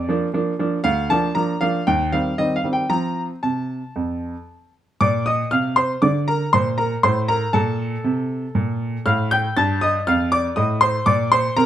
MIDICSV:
0, 0, Header, 1, 2, 480
1, 0, Start_track
1, 0, Key_signature, -2, "major"
1, 0, Tempo, 509771
1, 796, Time_signature, 4, 2, 24, 8
1, 2239, Tempo, 524017
1, 5119, Tempo, 503778
1, 10966, End_track
2, 0, Start_track
2, 0, Title_t, "Grand piano"
2, 0, Program_c, 0, 0
2, 0, Note_on_c, 0, 74, 114
2, 81, Note_on_c, 0, 53, 60
2, 86, Note_on_c, 0, 58, 59
2, 91, Note_on_c, 0, 62, 65
2, 217, Note_off_c, 0, 74, 0
2, 252, Note_off_c, 0, 53, 0
2, 255, Note_off_c, 0, 58, 0
2, 258, Note_off_c, 0, 62, 0
2, 317, Note_on_c, 0, 53, 54
2, 322, Note_on_c, 0, 58, 59
2, 323, Note_on_c, 0, 62, 64
2, 489, Note_off_c, 0, 53, 0
2, 493, Note_off_c, 0, 58, 0
2, 493, Note_off_c, 0, 62, 0
2, 558, Note_on_c, 0, 53, 56
2, 559, Note_on_c, 0, 58, 58
2, 563, Note_on_c, 0, 62, 65
2, 730, Note_off_c, 0, 53, 0
2, 731, Note_off_c, 0, 58, 0
2, 733, Note_off_c, 0, 62, 0
2, 788, Note_on_c, 0, 77, 104
2, 793, Note_on_c, 0, 38, 75
2, 1027, Note_off_c, 0, 38, 0
2, 1031, Note_off_c, 0, 77, 0
2, 1036, Note_on_c, 0, 81, 102
2, 1039, Note_on_c, 0, 53, 59
2, 1043, Note_on_c, 0, 58, 60
2, 1050, Note_on_c, 0, 62, 70
2, 1210, Note_off_c, 0, 53, 0
2, 1212, Note_off_c, 0, 58, 0
2, 1216, Note_off_c, 0, 62, 0
2, 1250, Note_off_c, 0, 81, 0
2, 1269, Note_on_c, 0, 82, 84
2, 1274, Note_on_c, 0, 53, 57
2, 1281, Note_on_c, 0, 58, 58
2, 1283, Note_on_c, 0, 62, 62
2, 1446, Note_off_c, 0, 53, 0
2, 1450, Note_off_c, 0, 58, 0
2, 1452, Note_off_c, 0, 62, 0
2, 1487, Note_off_c, 0, 82, 0
2, 1513, Note_on_c, 0, 77, 98
2, 1519, Note_on_c, 0, 53, 57
2, 1520, Note_on_c, 0, 58, 59
2, 1527, Note_on_c, 0, 62, 62
2, 1690, Note_off_c, 0, 53, 0
2, 1690, Note_off_c, 0, 58, 0
2, 1695, Note_off_c, 0, 62, 0
2, 1729, Note_off_c, 0, 77, 0
2, 1760, Note_on_c, 0, 79, 94
2, 1764, Note_on_c, 0, 39, 77
2, 1993, Note_off_c, 0, 39, 0
2, 1998, Note_off_c, 0, 79, 0
2, 2001, Note_on_c, 0, 77, 86
2, 2006, Note_on_c, 0, 51, 53
2, 2008, Note_on_c, 0, 55, 53
2, 2011, Note_on_c, 0, 60, 56
2, 2177, Note_off_c, 0, 51, 0
2, 2178, Note_off_c, 0, 55, 0
2, 2180, Note_off_c, 0, 60, 0
2, 2241, Note_off_c, 0, 77, 0
2, 2243, Note_on_c, 0, 75, 91
2, 2249, Note_on_c, 0, 51, 49
2, 2251, Note_on_c, 0, 55, 47
2, 2254, Note_on_c, 0, 60, 57
2, 2384, Note_off_c, 0, 75, 0
2, 2405, Note_on_c, 0, 77, 85
2, 2417, Note_off_c, 0, 51, 0
2, 2418, Note_off_c, 0, 55, 0
2, 2420, Note_off_c, 0, 60, 0
2, 2479, Note_on_c, 0, 51, 48
2, 2480, Note_on_c, 0, 55, 49
2, 2486, Note_on_c, 0, 60, 52
2, 2498, Note_off_c, 0, 77, 0
2, 2560, Note_on_c, 0, 79, 76
2, 2651, Note_off_c, 0, 51, 0
2, 2652, Note_off_c, 0, 55, 0
2, 2656, Note_off_c, 0, 60, 0
2, 2714, Note_on_c, 0, 53, 58
2, 2714, Note_on_c, 0, 82, 91
2, 2716, Note_on_c, 0, 60, 48
2, 2719, Note_off_c, 0, 79, 0
2, 3005, Note_off_c, 0, 82, 0
2, 3055, Note_off_c, 0, 53, 0
2, 3104, Note_off_c, 0, 60, 0
2, 3200, Note_on_c, 0, 81, 73
2, 3207, Note_on_c, 0, 48, 60
2, 3543, Note_off_c, 0, 48, 0
2, 3686, Note_on_c, 0, 41, 56
2, 4024, Note_off_c, 0, 41, 0
2, 4373, Note_off_c, 0, 81, 0
2, 4646, Note_on_c, 0, 86, 93
2, 4648, Note_on_c, 0, 46, 74
2, 4656, Note_on_c, 0, 74, 72
2, 4859, Note_off_c, 0, 86, 0
2, 4872, Note_off_c, 0, 74, 0
2, 4878, Note_on_c, 0, 87, 97
2, 4890, Note_on_c, 0, 75, 72
2, 5023, Note_off_c, 0, 46, 0
2, 5104, Note_off_c, 0, 75, 0
2, 5109, Note_on_c, 0, 89, 99
2, 5114, Note_off_c, 0, 87, 0
2, 5116, Note_on_c, 0, 48, 70
2, 5122, Note_on_c, 0, 77, 72
2, 5330, Note_off_c, 0, 89, 0
2, 5345, Note_off_c, 0, 77, 0
2, 5346, Note_on_c, 0, 84, 86
2, 5357, Note_on_c, 0, 72, 69
2, 5495, Note_off_c, 0, 84, 0
2, 5504, Note_off_c, 0, 48, 0
2, 5583, Note_off_c, 0, 72, 0
2, 5591, Note_on_c, 0, 86, 84
2, 5597, Note_on_c, 0, 50, 74
2, 5602, Note_on_c, 0, 74, 63
2, 5739, Note_off_c, 0, 86, 0
2, 5826, Note_off_c, 0, 74, 0
2, 5838, Note_on_c, 0, 82, 87
2, 5848, Note_on_c, 0, 70, 61
2, 5984, Note_off_c, 0, 50, 0
2, 6057, Note_off_c, 0, 82, 0
2, 6070, Note_off_c, 0, 70, 0
2, 6078, Note_on_c, 0, 84, 88
2, 6086, Note_on_c, 0, 46, 68
2, 6092, Note_on_c, 0, 72, 72
2, 6224, Note_off_c, 0, 84, 0
2, 6311, Note_off_c, 0, 72, 0
2, 6315, Note_on_c, 0, 82, 86
2, 6326, Note_on_c, 0, 70, 65
2, 6461, Note_off_c, 0, 82, 0
2, 6468, Note_off_c, 0, 46, 0
2, 6548, Note_off_c, 0, 70, 0
2, 6559, Note_on_c, 0, 84, 83
2, 6561, Note_on_c, 0, 45, 74
2, 6569, Note_on_c, 0, 72, 71
2, 6704, Note_off_c, 0, 84, 0
2, 6789, Note_off_c, 0, 72, 0
2, 6798, Note_on_c, 0, 82, 100
2, 6806, Note_on_c, 0, 70, 69
2, 6945, Note_off_c, 0, 45, 0
2, 7027, Note_off_c, 0, 70, 0
2, 7034, Note_on_c, 0, 81, 93
2, 7040, Note_off_c, 0, 82, 0
2, 7040, Note_on_c, 0, 46, 74
2, 7046, Note_on_c, 0, 69, 69
2, 7425, Note_off_c, 0, 46, 0
2, 7521, Note_on_c, 0, 48, 74
2, 7909, Note_off_c, 0, 48, 0
2, 8003, Note_on_c, 0, 46, 68
2, 8391, Note_off_c, 0, 46, 0
2, 8453, Note_off_c, 0, 69, 0
2, 8485, Note_off_c, 0, 81, 0
2, 8487, Note_on_c, 0, 89, 101
2, 8490, Note_on_c, 0, 45, 77
2, 8498, Note_on_c, 0, 77, 73
2, 8703, Note_off_c, 0, 89, 0
2, 8717, Note_off_c, 0, 77, 0
2, 8730, Note_on_c, 0, 91, 109
2, 8743, Note_on_c, 0, 79, 80
2, 8873, Note_off_c, 0, 45, 0
2, 8946, Note_off_c, 0, 91, 0
2, 8960, Note_off_c, 0, 79, 0
2, 8972, Note_on_c, 0, 93, 102
2, 8976, Note_on_c, 0, 43, 80
2, 8984, Note_on_c, 0, 81, 86
2, 9200, Note_off_c, 0, 81, 0
2, 9209, Note_on_c, 0, 87, 104
2, 9210, Note_off_c, 0, 93, 0
2, 9224, Note_on_c, 0, 75, 80
2, 9352, Note_off_c, 0, 87, 0
2, 9357, Note_off_c, 0, 43, 0
2, 9440, Note_off_c, 0, 75, 0
2, 9453, Note_on_c, 0, 89, 106
2, 9458, Note_on_c, 0, 41, 79
2, 9467, Note_on_c, 0, 77, 82
2, 9666, Note_off_c, 0, 89, 0
2, 9680, Note_off_c, 0, 77, 0
2, 9689, Note_on_c, 0, 86, 101
2, 9697, Note_on_c, 0, 74, 70
2, 9831, Note_off_c, 0, 86, 0
2, 9836, Note_off_c, 0, 41, 0
2, 9914, Note_off_c, 0, 74, 0
2, 9919, Note_on_c, 0, 87, 91
2, 9927, Note_on_c, 0, 45, 77
2, 9931, Note_on_c, 0, 75, 68
2, 10136, Note_off_c, 0, 87, 0
2, 10150, Note_off_c, 0, 75, 0
2, 10156, Note_on_c, 0, 84, 102
2, 10169, Note_on_c, 0, 72, 72
2, 10308, Note_off_c, 0, 45, 0
2, 10374, Note_off_c, 0, 84, 0
2, 10388, Note_off_c, 0, 72, 0
2, 10395, Note_on_c, 0, 86, 101
2, 10399, Note_on_c, 0, 46, 82
2, 10407, Note_on_c, 0, 74, 80
2, 10612, Note_off_c, 0, 86, 0
2, 10626, Note_off_c, 0, 74, 0
2, 10640, Note_on_c, 0, 84, 101
2, 10649, Note_on_c, 0, 72, 81
2, 10781, Note_off_c, 0, 46, 0
2, 10866, Note_off_c, 0, 72, 0
2, 10877, Note_on_c, 0, 82, 110
2, 10878, Note_off_c, 0, 84, 0
2, 10881, Note_on_c, 0, 48, 80
2, 10890, Note_on_c, 0, 70, 84
2, 10966, Note_off_c, 0, 48, 0
2, 10966, Note_off_c, 0, 70, 0
2, 10966, Note_off_c, 0, 82, 0
2, 10966, End_track
0, 0, End_of_file